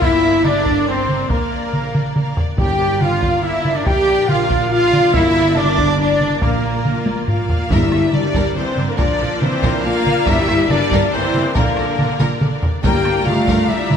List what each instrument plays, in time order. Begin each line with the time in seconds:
Already playing: string section A#3 D4 A#4 D5
0.01 double bass section G1, french horn section E4, viola section E4, cello section E4, violin section G4 E5, flute E5, trumpet E5, taiko
0.23 violin section A#4
0.44 french horn section D4, viola section D4, cello section D4, violin section G4 D5, flute D5, trumpet D5, taiko mid
0.66 violin section A#4, taiko
0.87 french horn section C4, viola section C4, cello section C4, violin section G4 C5, trumpet C5, flute C5
1.09 violin section A#4, taiko mid
1.30 double bass section A#1, french horn section A#3, viola section A#3, cello section A#3, flute A#4, trumpet A#4, violin section A#4 F5, taiko
1.53 violin section D5
1.73 violin section F5, taiko mid
1.95 violin section D5, taiko mid
2.16 violin section F5, taiko mid
2.37 violin section D5, taiko low
2.57 double bass section G1, timpani G2, string section A#3 D4 A#4 D5, french horn section G4, viola section G4, cello section G4, violin section A#4 G5, flute G5, trumpet G5, taiko
2.81 violin section D5
2.99 french horn section F4, viola section F4, cello section F4, violin section A#4 F5, trumpet F5, flute F5, taiko mid
3.23 violin section D5, taiko
3.43 viola section E4, french horn section E4, cello section E4, violin section A#4 E5, flute E5, trumpet E5
3.65 violin section D5, taiko mid
3.76 viola section D4, cello section D4, french horn section D4, flute D5, trumpet D5, violin section D5
3.85 double bass section A#1, french horn section G4, viola section G4, cello section G4, violin section F5 G5, flute G5, trumpet G5, taiko
4.09 violin section D5
4.27 french horn section F4, viola section F4, cello section F4, flute F5, trumpet F5, violin section F5, taiko mid
4.50 violin section D5, taiko
4.69 french horn section F4, viola section F4, cello section F4, flute F5, trumpet F5, violin section F5
4.93 violin section D5, taiko mid
5.13 double bass section G1, timpani G2, viola section E4, french horn section E4, cello section E4, violin section A#4 E5, flute E5, trumpet E5, taiko
5.36 violin section D5
5.55 french horn section D4, cello section D4, viola section D4, violin section A#4 D5, trumpet D5, flute D5, taiko mid
5.77 violin section D5, taiko
5.98 french horn section D4, cello section D4, viola section D4, violin section A#4 D5, trumpet D5, flute D5
6.20 violin section D5, taiko mid
6.41 double bass section A#1, french horn section A#3, viola section A#3, cello section A#3, string section F4, violin section A#4 F5, trumpet A#4, flute A#4, taiko
6.64 violin section D5
6.85 violin section F5, taiko mid
7.05 violin section D5, taiko high
7.27 viola section A#3, french horn section F4, violin section F5, flute F5, taiko low-mid
7.50 violin section D5, taiko low
7.69 double bass section G1, timpani G2, cello section G2, viola section G3, string section A#3 D4 A#4 D5, french horn section E4, violin section A#4 D5 E5, flute E5, taiko
7.92 double bass section G1, cello section G2, violin section A4, taiko rim
8.13 double bass section G1, cello section G2, viola section G3, french horn section D4, violin section A#4 D5, flute D5, taiko mid
8.34 double bass section G1, cello section G2, violin section A#4, taiko
8.55 double bass section G1, cello section G2, viola section E3, french horn section C4, violin section A4 C5, flute C5
8.76 double bass section G1, cello section G2, violin section A#4, taiko mid
8.88 viola section D3, french horn section A#3, violin section A#4, flute A#4
8.97 double bass section A#1, cello section A#2, viola section F3, french horn section D4, violin section A#4 D5, flute D5, taiko
9.20 double bass section A#1, cello section A#2, violin section A4
9.41 double bass section A#1, cello section A#2, viola section E3, french horn section C4, violin section A#4 C5, flute C5, taiko mid
9.62 double bass section A#1, cello section A#2, violin section A#4, taiko
9.83 double bass section A#1, cello section A#2, viola section A#3, french horn section F4, violin section A4 F5, flute F5
10.05 double bass section A#1, cello section A#2, violin section A#4, taiko mid
10.26 double bass section G1, timpani G2, cello section G2, viola section G3, french horn section E4, violin section A#4 D5 E5, flute E5, taiko
10.48 double bass section G1, cello section G2, violin section A4, taiko rim
10.68 double bass section G1, cello section G2, viola section G3, french horn section D4, violin section A#4 D5, flute D5, taiko mid
10.91 double bass section G1, cello section G2, violin section A#4, taiko
11.12 double bass section G1, cello section G2, viola section E3, french horn section C4, violin section A4 C5, flute C5
11.34 double bass section G1, cello section G2, violin section A#4, taiko mid
11.54 double bass section A#1, cello section A#2, viola section D3, french horn section A#3, violin section A#4, flute A#4, taiko
11.77 double bass section A#1, cello section A#2, violin section A4, taiko rim
11.97 double bass section A#1, cello section A#2, violin section A#4, taiko mid
12.19 double bass section A#1, cello section A#2, violin section A#4, taiko mid
12.41 double bass section A#1, cello section A#2, violin section A4, taiko mid
12.62 double bass section A#1, cello section A#2, violin section A#4, taiko low
12.83 double bass section G1, timpani G2, cello section G2, string section G3 D4 D5 A#5, viola section A#3, french horn section G4, violin section A#4 D5 G5, flute G5, taiko
13.05 double bass section G1, cello section G2, violin section A4, taiko rim
13.25 double bass section G1, cello section G2, viola section A3, french horn section F4, violin section A#4 F5, flute F5, taiko mid
13.47 double bass section G1, cello section G2, violin section A#4, taiko
13.68 double bass section G1, cello section G2, viola section G3, french horn section E4, violin section A4 E5, flute E5
13.90 double bass section G1, cello section G2, violin section A#4, taiko mid